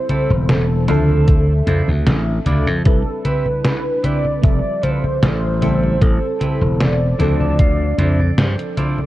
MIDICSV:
0, 0, Header, 1, 7, 480
1, 0, Start_track
1, 0, Tempo, 789474
1, 1736, Time_signature, 4, 2, 24, 8
1, 5508, End_track
2, 0, Start_track
2, 0, Title_t, "Soft synth lead"
2, 0, Program_c, 0, 80
2, 0, Note_on_c, 0, 72, 115
2, 294, Note_on_c, 0, 69, 104
2, 303, Note_off_c, 0, 72, 0
2, 1495, Note_off_c, 0, 69, 0
2, 1743, Note_on_c, 0, 69, 102
2, 1982, Note_on_c, 0, 71, 115
2, 1991, Note_off_c, 0, 69, 0
2, 2462, Note_on_c, 0, 74, 111
2, 2472, Note_off_c, 0, 71, 0
2, 2696, Note_off_c, 0, 74, 0
2, 2700, Note_on_c, 0, 74, 118
2, 2936, Note_on_c, 0, 72, 101
2, 2945, Note_off_c, 0, 74, 0
2, 2984, Note_on_c, 0, 71, 84
2, 2993, Note_off_c, 0, 72, 0
2, 3034, Note_on_c, 0, 72, 105
2, 3043, Note_off_c, 0, 71, 0
2, 3177, Note_off_c, 0, 72, 0
2, 3181, Note_on_c, 0, 72, 113
2, 3657, Note_on_c, 0, 69, 110
2, 3666, Note_off_c, 0, 72, 0
2, 4139, Note_on_c, 0, 74, 118
2, 4148, Note_off_c, 0, 69, 0
2, 5338, Note_off_c, 0, 74, 0
2, 5508, End_track
3, 0, Start_track
3, 0, Title_t, "Clean electric guitar"
3, 0, Program_c, 1, 27
3, 56, Note_on_c, 1, 64, 87
3, 61, Note_on_c, 1, 60, 83
3, 61, Note_on_c, 1, 67, 83
3, 61, Note_on_c, 1, 69, 102
3, 184, Note_off_c, 1, 60, 0
3, 184, Note_off_c, 1, 64, 0
3, 185, Note_off_c, 1, 67, 0
3, 186, Note_off_c, 1, 69, 0
3, 535, Note_on_c, 1, 64, 93
3, 540, Note_on_c, 1, 72, 106
3, 542, Note_on_c, 1, 65, 80
3, 543, Note_on_c, 1, 62, 87
3, 927, Note_off_c, 1, 62, 0
3, 927, Note_off_c, 1, 64, 0
3, 928, Note_off_c, 1, 65, 0
3, 928, Note_off_c, 1, 72, 0
3, 1014, Note_on_c, 1, 64, 86
3, 1017, Note_on_c, 1, 65, 74
3, 1017, Note_on_c, 1, 72, 99
3, 1019, Note_on_c, 1, 62, 80
3, 1142, Note_off_c, 1, 62, 0
3, 1143, Note_off_c, 1, 64, 0
3, 1143, Note_off_c, 1, 65, 0
3, 1144, Note_off_c, 1, 72, 0
3, 1495, Note_on_c, 1, 62, 99
3, 1496, Note_on_c, 1, 64, 89
3, 1500, Note_on_c, 1, 74, 95
3, 1501, Note_on_c, 1, 65, 79
3, 1623, Note_off_c, 1, 62, 0
3, 1624, Note_off_c, 1, 64, 0
3, 1624, Note_off_c, 1, 65, 0
3, 1625, Note_off_c, 1, 74, 0
3, 1974, Note_on_c, 1, 64, 86
3, 1978, Note_on_c, 1, 71, 109
3, 1981, Note_on_c, 1, 67, 79
3, 1982, Note_on_c, 1, 60, 77
3, 2103, Note_off_c, 1, 60, 0
3, 2103, Note_off_c, 1, 64, 0
3, 2104, Note_off_c, 1, 67, 0
3, 2104, Note_off_c, 1, 71, 0
3, 2454, Note_on_c, 1, 60, 101
3, 2458, Note_on_c, 1, 67, 83
3, 2460, Note_on_c, 1, 64, 68
3, 2462, Note_on_c, 1, 71, 91
3, 2583, Note_off_c, 1, 60, 0
3, 2584, Note_off_c, 1, 64, 0
3, 2585, Note_off_c, 1, 67, 0
3, 2585, Note_off_c, 1, 71, 0
3, 2935, Note_on_c, 1, 60, 85
3, 2938, Note_on_c, 1, 65, 88
3, 2939, Note_on_c, 1, 64, 81
3, 2941, Note_on_c, 1, 69, 85
3, 3063, Note_off_c, 1, 60, 0
3, 3064, Note_off_c, 1, 64, 0
3, 3065, Note_off_c, 1, 65, 0
3, 3065, Note_off_c, 1, 69, 0
3, 3414, Note_on_c, 1, 60, 98
3, 3416, Note_on_c, 1, 67, 90
3, 3418, Note_on_c, 1, 64, 74
3, 3420, Note_on_c, 1, 69, 97
3, 3805, Note_off_c, 1, 60, 0
3, 3806, Note_off_c, 1, 64, 0
3, 3806, Note_off_c, 1, 67, 0
3, 3807, Note_off_c, 1, 69, 0
3, 3893, Note_on_c, 1, 60, 95
3, 3896, Note_on_c, 1, 64, 74
3, 3896, Note_on_c, 1, 67, 81
3, 3898, Note_on_c, 1, 71, 87
3, 4022, Note_off_c, 1, 60, 0
3, 4022, Note_off_c, 1, 64, 0
3, 4023, Note_off_c, 1, 71, 0
3, 4024, Note_off_c, 1, 67, 0
3, 4372, Note_on_c, 1, 64, 84
3, 4374, Note_on_c, 1, 79, 68
3, 4376, Note_on_c, 1, 72, 106
3, 4378, Note_on_c, 1, 62, 84
3, 4378, Note_on_c, 1, 65, 87
3, 4493, Note_off_c, 1, 79, 0
3, 4501, Note_on_c, 1, 81, 72
3, 4607, Note_off_c, 1, 81, 0
3, 4617, Note_on_c, 1, 77, 76
3, 4764, Note_off_c, 1, 62, 0
3, 4765, Note_off_c, 1, 64, 0
3, 4766, Note_off_c, 1, 65, 0
3, 4766, Note_off_c, 1, 72, 0
3, 4840, Note_off_c, 1, 77, 0
3, 4854, Note_on_c, 1, 64, 76
3, 4857, Note_on_c, 1, 65, 90
3, 4858, Note_on_c, 1, 62, 79
3, 4858, Note_on_c, 1, 76, 70
3, 4859, Note_on_c, 1, 72, 99
3, 4975, Note_off_c, 1, 76, 0
3, 4983, Note_off_c, 1, 62, 0
3, 4983, Note_off_c, 1, 64, 0
3, 4984, Note_off_c, 1, 65, 0
3, 4984, Note_off_c, 1, 72, 0
3, 4986, Note_on_c, 1, 74, 75
3, 5090, Note_off_c, 1, 74, 0
3, 5100, Note_on_c, 1, 72, 76
3, 5322, Note_off_c, 1, 72, 0
3, 5334, Note_on_c, 1, 64, 87
3, 5337, Note_on_c, 1, 65, 92
3, 5338, Note_on_c, 1, 74, 69
3, 5339, Note_on_c, 1, 62, 84
3, 5343, Note_on_c, 1, 72, 84
3, 5463, Note_off_c, 1, 62, 0
3, 5463, Note_off_c, 1, 64, 0
3, 5464, Note_off_c, 1, 65, 0
3, 5465, Note_off_c, 1, 72, 0
3, 5508, Note_off_c, 1, 74, 0
3, 5508, End_track
4, 0, Start_track
4, 0, Title_t, "FM electric piano"
4, 0, Program_c, 2, 5
4, 0, Control_c, 2, 64, 127
4, 0, Note_on_c, 2, 55, 85
4, 0, Note_on_c, 2, 60, 75
4, 0, Note_on_c, 2, 64, 77
4, 0, Note_on_c, 2, 69, 92
4, 0, Note_on_c, 2, 72, 76
4, 486, Note_off_c, 2, 55, 0
4, 490, Note_off_c, 2, 72, 0
4, 492, Note_off_c, 2, 60, 0
4, 493, Note_off_c, 2, 64, 0
4, 496, Note_off_c, 2, 69, 0
4, 528, Note_on_c, 2, 53, 93
4, 532, Note_on_c, 2, 60, 87
4, 537, Note_on_c, 2, 62, 85
4, 542, Note_on_c, 2, 76, 88
4, 543, Control_c, 2, 64, 0
4, 548, Note_on_c, 2, 69, 102
4, 648, Control_c, 2, 64, 127
4, 1687, Note_off_c, 2, 53, 0
4, 1689, Note_off_c, 2, 60, 0
4, 1692, Note_off_c, 2, 62, 0
4, 1694, Note_off_c, 2, 76, 0
4, 1697, Note_off_c, 2, 69, 0
4, 1725, Note_on_c, 2, 55, 80
4, 1730, Note_on_c, 2, 60, 71
4, 1735, Note_on_c, 2, 62, 73
4, 1740, Note_on_c, 2, 64, 76
4, 1742, Note_on_c, 2, 71, 90
4, 1744, Control_c, 2, 64, 0
4, 1857, Control_c, 2, 64, 127
4, 2646, Note_off_c, 2, 55, 0
4, 2648, Note_off_c, 2, 60, 0
4, 2651, Note_off_c, 2, 62, 0
4, 2653, Note_off_c, 2, 64, 0
4, 2654, Note_off_c, 2, 71, 0
4, 2686, Note_on_c, 2, 55, 81
4, 2689, Note_on_c, 2, 60, 73
4, 2696, Note_on_c, 2, 76, 73
4, 2699, Note_on_c, 2, 53, 74
4, 2703, Note_on_c, 2, 69, 86
4, 2705, Control_c, 2, 64, 0
4, 2813, Control_c, 2, 64, 127
4, 3366, Note_off_c, 2, 55, 0
4, 3368, Note_off_c, 2, 60, 0
4, 3371, Note_off_c, 2, 76, 0
4, 3373, Note_off_c, 2, 53, 0
4, 3375, Note_off_c, 2, 69, 0
4, 3409, Note_on_c, 2, 55, 80
4, 3414, Note_on_c, 2, 72, 77
4, 3418, Note_on_c, 2, 60, 75
4, 3420, Note_on_c, 2, 64, 75
4, 3423, Control_c, 2, 64, 0
4, 3427, Note_on_c, 2, 69, 92
4, 3520, Control_c, 2, 64, 127
4, 4328, Note_off_c, 2, 55, 0
4, 4330, Note_off_c, 2, 72, 0
4, 4332, Note_off_c, 2, 60, 0
4, 4333, Note_off_c, 2, 64, 0
4, 4337, Note_off_c, 2, 69, 0
4, 4367, Note_on_c, 2, 53, 93
4, 4371, Note_on_c, 2, 60, 86
4, 4375, Note_on_c, 2, 62, 86
4, 4384, Note_on_c, 2, 69, 102
4, 4385, Control_c, 2, 64, 0
4, 4498, Control_c, 2, 64, 127
4, 5508, Note_off_c, 2, 53, 0
4, 5508, Note_off_c, 2, 60, 0
4, 5508, Note_off_c, 2, 62, 0
4, 5508, Note_off_c, 2, 69, 0
4, 5508, End_track
5, 0, Start_track
5, 0, Title_t, "Slap bass"
5, 0, Program_c, 3, 36
5, 183, Note_on_c, 3, 28, 92
5, 536, Note_off_c, 3, 28, 0
5, 536, Note_on_c, 3, 38, 90
5, 976, Note_off_c, 3, 38, 0
5, 1014, Note_on_c, 3, 41, 99
5, 1114, Note_off_c, 3, 41, 0
5, 1142, Note_on_c, 3, 38, 90
5, 1254, Note_off_c, 3, 38, 0
5, 1257, Note_on_c, 3, 33, 91
5, 1447, Note_off_c, 3, 33, 0
5, 1497, Note_on_c, 3, 38, 76
5, 1623, Note_off_c, 3, 38, 0
5, 1623, Note_on_c, 3, 41, 99
5, 1711, Note_off_c, 3, 41, 0
5, 1736, Note_on_c, 3, 36, 103
5, 1835, Note_off_c, 3, 36, 0
5, 2696, Note_on_c, 3, 29, 98
5, 2796, Note_off_c, 3, 29, 0
5, 3176, Note_on_c, 3, 33, 100
5, 3617, Note_off_c, 3, 33, 0
5, 3658, Note_on_c, 3, 33, 102
5, 3756, Note_off_c, 3, 33, 0
5, 4021, Note_on_c, 3, 28, 91
5, 4336, Note_off_c, 3, 28, 0
5, 4375, Note_on_c, 3, 38, 89
5, 4816, Note_off_c, 3, 38, 0
5, 4853, Note_on_c, 3, 41, 90
5, 5045, Note_off_c, 3, 41, 0
5, 5094, Note_on_c, 3, 43, 102
5, 5195, Note_off_c, 3, 43, 0
5, 5508, End_track
6, 0, Start_track
6, 0, Title_t, "Muted slap bass strokes"
6, 3064, Note_on_c, 9, 29, 43
6, 3125, Note_off_c, 9, 29, 0
6, 5508, End_track
7, 0, Start_track
7, 0, Title_t, "Drums"
7, 56, Note_on_c, 9, 42, 67
7, 56, Note_on_c, 9, 63, 66
7, 117, Note_off_c, 9, 42, 0
7, 117, Note_off_c, 9, 63, 0
7, 184, Note_on_c, 9, 63, 36
7, 245, Note_off_c, 9, 63, 0
7, 298, Note_on_c, 9, 38, 125
7, 298, Note_on_c, 9, 42, 86
7, 298, Note_on_c, 9, 63, 29
7, 359, Note_off_c, 9, 38, 0
7, 359, Note_off_c, 9, 42, 0
7, 359, Note_off_c, 9, 63, 0
7, 536, Note_on_c, 9, 42, 69
7, 536, Note_on_c, 9, 63, 64
7, 597, Note_off_c, 9, 42, 0
7, 597, Note_off_c, 9, 63, 0
7, 662, Note_on_c, 9, 63, 39
7, 723, Note_off_c, 9, 63, 0
7, 776, Note_on_c, 9, 42, 82
7, 776, Note_on_c, 9, 63, 28
7, 777, Note_on_c, 9, 36, 124
7, 837, Note_off_c, 9, 42, 0
7, 837, Note_off_c, 9, 63, 0
7, 838, Note_off_c, 9, 36, 0
7, 1016, Note_on_c, 9, 42, 69
7, 1016, Note_on_c, 9, 63, 65
7, 1077, Note_off_c, 9, 42, 0
7, 1077, Note_off_c, 9, 63, 0
7, 1143, Note_on_c, 9, 63, 37
7, 1204, Note_off_c, 9, 63, 0
7, 1256, Note_on_c, 9, 38, 125
7, 1256, Note_on_c, 9, 42, 84
7, 1316, Note_off_c, 9, 38, 0
7, 1316, Note_off_c, 9, 42, 0
7, 1495, Note_on_c, 9, 42, 70
7, 1495, Note_on_c, 9, 63, 65
7, 1556, Note_off_c, 9, 42, 0
7, 1556, Note_off_c, 9, 63, 0
7, 1623, Note_on_c, 9, 63, 39
7, 1684, Note_off_c, 9, 63, 0
7, 1735, Note_on_c, 9, 42, 77
7, 1735, Note_on_c, 9, 63, 26
7, 1737, Note_on_c, 9, 36, 127
7, 1795, Note_off_c, 9, 42, 0
7, 1795, Note_off_c, 9, 63, 0
7, 1797, Note_off_c, 9, 36, 0
7, 1975, Note_on_c, 9, 42, 68
7, 1975, Note_on_c, 9, 63, 64
7, 2036, Note_off_c, 9, 42, 0
7, 2036, Note_off_c, 9, 63, 0
7, 2102, Note_on_c, 9, 63, 36
7, 2163, Note_off_c, 9, 63, 0
7, 2216, Note_on_c, 9, 38, 127
7, 2216, Note_on_c, 9, 42, 85
7, 2277, Note_off_c, 9, 38, 0
7, 2277, Note_off_c, 9, 42, 0
7, 2456, Note_on_c, 9, 42, 69
7, 2456, Note_on_c, 9, 63, 65
7, 2517, Note_off_c, 9, 42, 0
7, 2517, Note_off_c, 9, 63, 0
7, 2583, Note_on_c, 9, 63, 36
7, 2644, Note_off_c, 9, 63, 0
7, 2697, Note_on_c, 9, 36, 123
7, 2697, Note_on_c, 9, 42, 80
7, 2697, Note_on_c, 9, 63, 27
7, 2758, Note_off_c, 9, 36, 0
7, 2758, Note_off_c, 9, 42, 0
7, 2758, Note_off_c, 9, 63, 0
7, 2938, Note_on_c, 9, 42, 67
7, 2938, Note_on_c, 9, 63, 62
7, 2999, Note_off_c, 9, 42, 0
7, 2999, Note_off_c, 9, 63, 0
7, 3064, Note_on_c, 9, 63, 36
7, 3125, Note_off_c, 9, 63, 0
7, 3178, Note_on_c, 9, 38, 118
7, 3178, Note_on_c, 9, 42, 78
7, 3178, Note_on_c, 9, 63, 27
7, 3238, Note_off_c, 9, 38, 0
7, 3238, Note_off_c, 9, 42, 0
7, 3238, Note_off_c, 9, 63, 0
7, 3417, Note_on_c, 9, 42, 67
7, 3417, Note_on_c, 9, 63, 63
7, 3478, Note_off_c, 9, 42, 0
7, 3478, Note_off_c, 9, 63, 0
7, 3546, Note_on_c, 9, 63, 37
7, 3607, Note_off_c, 9, 63, 0
7, 3657, Note_on_c, 9, 36, 124
7, 3659, Note_on_c, 9, 42, 80
7, 3659, Note_on_c, 9, 63, 26
7, 3718, Note_off_c, 9, 36, 0
7, 3720, Note_off_c, 9, 42, 0
7, 3720, Note_off_c, 9, 63, 0
7, 3898, Note_on_c, 9, 42, 65
7, 3898, Note_on_c, 9, 63, 60
7, 3959, Note_off_c, 9, 42, 0
7, 3959, Note_off_c, 9, 63, 0
7, 4024, Note_on_c, 9, 63, 35
7, 4085, Note_off_c, 9, 63, 0
7, 4137, Note_on_c, 9, 38, 125
7, 4137, Note_on_c, 9, 42, 81
7, 4137, Note_on_c, 9, 63, 28
7, 4198, Note_off_c, 9, 38, 0
7, 4198, Note_off_c, 9, 42, 0
7, 4198, Note_off_c, 9, 63, 0
7, 4376, Note_on_c, 9, 42, 64
7, 4376, Note_on_c, 9, 63, 59
7, 4437, Note_off_c, 9, 42, 0
7, 4437, Note_off_c, 9, 63, 0
7, 4504, Note_on_c, 9, 63, 37
7, 4564, Note_off_c, 9, 63, 0
7, 4615, Note_on_c, 9, 42, 78
7, 4615, Note_on_c, 9, 63, 26
7, 4616, Note_on_c, 9, 36, 120
7, 4676, Note_off_c, 9, 42, 0
7, 4676, Note_off_c, 9, 63, 0
7, 4677, Note_off_c, 9, 36, 0
7, 4856, Note_on_c, 9, 42, 66
7, 4856, Note_on_c, 9, 63, 62
7, 4917, Note_off_c, 9, 42, 0
7, 4917, Note_off_c, 9, 63, 0
7, 4982, Note_on_c, 9, 63, 36
7, 5043, Note_off_c, 9, 63, 0
7, 5095, Note_on_c, 9, 38, 121
7, 5095, Note_on_c, 9, 42, 80
7, 5156, Note_off_c, 9, 38, 0
7, 5156, Note_off_c, 9, 42, 0
7, 5223, Note_on_c, 9, 42, 35
7, 5284, Note_off_c, 9, 42, 0
7, 5334, Note_on_c, 9, 42, 62
7, 5334, Note_on_c, 9, 63, 59
7, 5395, Note_off_c, 9, 42, 0
7, 5395, Note_off_c, 9, 63, 0
7, 5462, Note_on_c, 9, 63, 36
7, 5508, Note_off_c, 9, 63, 0
7, 5508, End_track
0, 0, End_of_file